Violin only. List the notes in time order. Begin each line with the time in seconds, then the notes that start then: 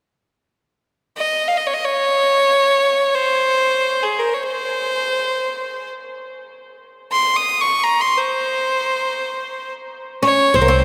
1.17 D#5
1.48 F5
1.57 D#5
1.67 C#5
1.74 D#5
1.85 C#5
3.15 C5
4.02 G#4
4.19 A#4
4.34 C#5
4.43 C5
7.12 C6
7.36 D#6
7.61 C#6
7.83 A#5
8.01 C6
8.18 C5
10.25 C#5
10.55 C5
10.79 C5